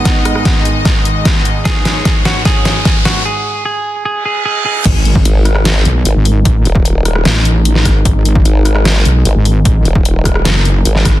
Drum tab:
CC |----------------|----------------|----------------|x---------------|
HH |x-x-x-x-x-x-x-x-|x-x-x-x-x-x-x-x-|----------------|x-x-x-x-x-x-x-o-|
SD |o-rro---o---o---|o-o-o-o-o-o-o-o-|----------------|------rro-------|
BD |o---o---o---o---|o---o---o---o---|----------------|o--o------------|

CC |----------------|----------------|----------------|
HH |x-x-x-x-x-x-x-o-|x-x-x-x-x-x-x-o-|x-x-x-x-x-x-x-o-|
SD |------rro----or-|------rro-------|------rro----or-|
BD |o--o----------o-|o--o------------|o--o--o-------o-|